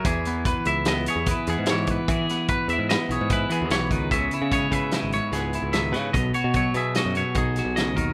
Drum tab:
HH |xxxxxxxxxx|xxxxxxxxxx|xxxxxxxxxx|xxxxxxxxxx|
SD |----o---o-|-o--o---o-|----o-o-oo|----o--oo-|
BD |o-o---o--o|o-o---o--o|o-oo------|o-o---o--o|